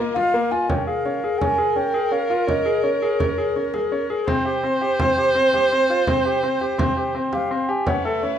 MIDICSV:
0, 0, Header, 1, 6, 480
1, 0, Start_track
1, 0, Tempo, 358852
1, 922, Time_signature, 5, 2, 24, 8
1, 11217, End_track
2, 0, Start_track
2, 0, Title_t, "Flute"
2, 0, Program_c, 0, 73
2, 191, Note_on_c, 0, 77, 103
2, 688, Note_on_c, 0, 80, 89
2, 708, Note_off_c, 0, 77, 0
2, 921, Note_on_c, 0, 79, 80
2, 942, Note_off_c, 0, 80, 0
2, 1151, Note_off_c, 0, 79, 0
2, 1159, Note_on_c, 0, 77, 83
2, 1855, Note_on_c, 0, 80, 100
2, 1875, Note_off_c, 0, 77, 0
2, 2360, Note_on_c, 0, 79, 87
2, 2381, Note_off_c, 0, 80, 0
2, 2840, Note_on_c, 0, 77, 81
2, 2860, Note_off_c, 0, 79, 0
2, 3320, Note_off_c, 0, 77, 0
2, 3327, Note_on_c, 0, 75, 80
2, 3784, Note_on_c, 0, 73, 66
2, 3804, Note_off_c, 0, 75, 0
2, 4752, Note_off_c, 0, 73, 0
2, 9821, Note_on_c, 0, 77, 76
2, 10295, Note_on_c, 0, 80, 68
2, 10315, Note_off_c, 0, 77, 0
2, 10535, Note_on_c, 0, 78, 77
2, 10555, Note_off_c, 0, 80, 0
2, 10695, Note_off_c, 0, 78, 0
2, 10695, Note_on_c, 0, 78, 54
2, 10765, Note_on_c, 0, 76, 74
2, 10785, Note_off_c, 0, 78, 0
2, 11217, Note_off_c, 0, 76, 0
2, 11217, End_track
3, 0, Start_track
3, 0, Title_t, "Viola"
3, 0, Program_c, 1, 41
3, 0, Note_on_c, 1, 70, 101
3, 684, Note_off_c, 1, 70, 0
3, 908, Note_on_c, 1, 70, 97
3, 5660, Note_off_c, 1, 70, 0
3, 5714, Note_on_c, 1, 72, 118
3, 10230, Note_off_c, 1, 72, 0
3, 10537, Note_on_c, 1, 71, 98
3, 11217, Note_off_c, 1, 71, 0
3, 11217, End_track
4, 0, Start_track
4, 0, Title_t, "String section"
4, 0, Program_c, 2, 48
4, 0, Note_on_c, 2, 58, 68
4, 0, Note_on_c, 2, 65, 58
4, 0, Note_on_c, 2, 75, 69
4, 884, Note_off_c, 2, 65, 0
4, 885, Note_off_c, 2, 58, 0
4, 886, Note_off_c, 2, 75, 0
4, 10513, Note_on_c, 2, 57, 61
4, 10513, Note_on_c, 2, 73, 58
4, 10521, Note_on_c, 2, 64, 55
4, 11217, Note_off_c, 2, 57, 0
4, 11217, Note_off_c, 2, 64, 0
4, 11217, Note_off_c, 2, 73, 0
4, 11217, End_track
5, 0, Start_track
5, 0, Title_t, "Grand piano"
5, 0, Program_c, 3, 0
5, 0, Note_on_c, 3, 58, 69
5, 167, Note_off_c, 3, 58, 0
5, 218, Note_on_c, 3, 65, 73
5, 407, Note_off_c, 3, 65, 0
5, 451, Note_on_c, 3, 58, 66
5, 643, Note_off_c, 3, 58, 0
5, 687, Note_on_c, 3, 65, 70
5, 881, Note_off_c, 3, 65, 0
5, 928, Note_on_c, 3, 61, 68
5, 1121, Note_off_c, 3, 61, 0
5, 1166, Note_on_c, 3, 68, 63
5, 1360, Note_off_c, 3, 68, 0
5, 1410, Note_on_c, 3, 61, 64
5, 1602, Note_off_c, 3, 61, 0
5, 1654, Note_on_c, 3, 68, 62
5, 1844, Note_off_c, 3, 68, 0
5, 1889, Note_on_c, 3, 61, 69
5, 2081, Note_off_c, 3, 61, 0
5, 2115, Note_on_c, 3, 68, 65
5, 2313, Note_off_c, 3, 68, 0
5, 2353, Note_on_c, 3, 61, 60
5, 2551, Note_off_c, 3, 61, 0
5, 2594, Note_on_c, 3, 68, 67
5, 2792, Note_off_c, 3, 68, 0
5, 2828, Note_on_c, 3, 61, 65
5, 3028, Note_off_c, 3, 61, 0
5, 3076, Note_on_c, 3, 65, 69
5, 3273, Note_off_c, 3, 65, 0
5, 3307, Note_on_c, 3, 61, 72
5, 3508, Note_off_c, 3, 61, 0
5, 3552, Note_on_c, 3, 68, 69
5, 3751, Note_off_c, 3, 68, 0
5, 3793, Note_on_c, 3, 61, 65
5, 3992, Note_off_c, 3, 61, 0
5, 4042, Note_on_c, 3, 68, 72
5, 4237, Note_off_c, 3, 68, 0
5, 4276, Note_on_c, 3, 61, 76
5, 4473, Note_off_c, 3, 61, 0
5, 4520, Note_on_c, 3, 68, 64
5, 4715, Note_off_c, 3, 68, 0
5, 4763, Note_on_c, 3, 61, 62
5, 4957, Note_off_c, 3, 61, 0
5, 4999, Note_on_c, 3, 68, 62
5, 5195, Note_off_c, 3, 68, 0
5, 5242, Note_on_c, 3, 61, 71
5, 5437, Note_off_c, 3, 61, 0
5, 5482, Note_on_c, 3, 68, 71
5, 5677, Note_off_c, 3, 68, 0
5, 5717, Note_on_c, 3, 60, 86
5, 5914, Note_off_c, 3, 60, 0
5, 5957, Note_on_c, 3, 67, 67
5, 6154, Note_off_c, 3, 67, 0
5, 6200, Note_on_c, 3, 60, 64
5, 6396, Note_off_c, 3, 60, 0
5, 6441, Note_on_c, 3, 67, 69
5, 6637, Note_off_c, 3, 67, 0
5, 6684, Note_on_c, 3, 60, 69
5, 6879, Note_off_c, 3, 60, 0
5, 6926, Note_on_c, 3, 67, 58
5, 7120, Note_off_c, 3, 67, 0
5, 7157, Note_on_c, 3, 60, 64
5, 7355, Note_off_c, 3, 60, 0
5, 7412, Note_on_c, 3, 67, 58
5, 7604, Note_off_c, 3, 67, 0
5, 7656, Note_on_c, 3, 60, 59
5, 7846, Note_off_c, 3, 60, 0
5, 7889, Note_on_c, 3, 65, 64
5, 8083, Note_off_c, 3, 65, 0
5, 8124, Note_on_c, 3, 60, 75
5, 8320, Note_off_c, 3, 60, 0
5, 8364, Note_on_c, 3, 67, 67
5, 8560, Note_off_c, 3, 67, 0
5, 8603, Note_on_c, 3, 60, 63
5, 8800, Note_off_c, 3, 60, 0
5, 8843, Note_on_c, 3, 67, 60
5, 9040, Note_off_c, 3, 67, 0
5, 9073, Note_on_c, 3, 60, 75
5, 9274, Note_off_c, 3, 60, 0
5, 9321, Note_on_c, 3, 67, 65
5, 9518, Note_off_c, 3, 67, 0
5, 9561, Note_on_c, 3, 60, 56
5, 9759, Note_off_c, 3, 60, 0
5, 9803, Note_on_c, 3, 67, 63
5, 10000, Note_off_c, 3, 67, 0
5, 10043, Note_on_c, 3, 60, 64
5, 10240, Note_off_c, 3, 60, 0
5, 10281, Note_on_c, 3, 67, 73
5, 10479, Note_off_c, 3, 67, 0
5, 10529, Note_on_c, 3, 61, 82
5, 10724, Note_off_c, 3, 61, 0
5, 10769, Note_on_c, 3, 69, 68
5, 10964, Note_off_c, 3, 69, 0
5, 11006, Note_on_c, 3, 61, 62
5, 11203, Note_off_c, 3, 61, 0
5, 11217, End_track
6, 0, Start_track
6, 0, Title_t, "Frame drum"
6, 215, Note_on_c, 9, 64, 36
6, 349, Note_off_c, 9, 64, 0
6, 697, Note_on_c, 9, 64, 18
6, 831, Note_off_c, 9, 64, 0
6, 931, Note_on_c, 9, 64, 50
6, 1065, Note_off_c, 9, 64, 0
6, 1409, Note_on_c, 9, 64, 16
6, 1543, Note_off_c, 9, 64, 0
6, 1891, Note_on_c, 9, 64, 51
6, 2025, Note_off_c, 9, 64, 0
6, 2362, Note_on_c, 9, 64, 17
6, 2496, Note_off_c, 9, 64, 0
6, 3324, Note_on_c, 9, 64, 44
6, 3458, Note_off_c, 9, 64, 0
6, 3801, Note_on_c, 9, 64, 16
6, 3935, Note_off_c, 9, 64, 0
6, 4282, Note_on_c, 9, 64, 49
6, 4416, Note_off_c, 9, 64, 0
6, 4759, Note_on_c, 9, 64, 16
6, 4892, Note_off_c, 9, 64, 0
6, 4999, Note_on_c, 9, 64, 37
6, 5132, Note_off_c, 9, 64, 0
6, 5721, Note_on_c, 9, 64, 49
6, 5855, Note_off_c, 9, 64, 0
6, 6213, Note_on_c, 9, 64, 17
6, 6347, Note_off_c, 9, 64, 0
6, 6682, Note_on_c, 9, 64, 58
6, 6816, Note_off_c, 9, 64, 0
6, 7164, Note_on_c, 9, 64, 18
6, 7298, Note_off_c, 9, 64, 0
6, 7403, Note_on_c, 9, 64, 39
6, 7537, Note_off_c, 9, 64, 0
6, 8124, Note_on_c, 9, 64, 53
6, 8257, Note_off_c, 9, 64, 0
6, 8837, Note_on_c, 9, 64, 17
6, 8971, Note_off_c, 9, 64, 0
6, 9086, Note_on_c, 9, 64, 59
6, 9219, Note_off_c, 9, 64, 0
6, 9800, Note_on_c, 9, 64, 42
6, 9934, Note_off_c, 9, 64, 0
6, 10521, Note_on_c, 9, 64, 50
6, 10655, Note_off_c, 9, 64, 0
6, 11010, Note_on_c, 9, 64, 19
6, 11144, Note_off_c, 9, 64, 0
6, 11217, End_track
0, 0, End_of_file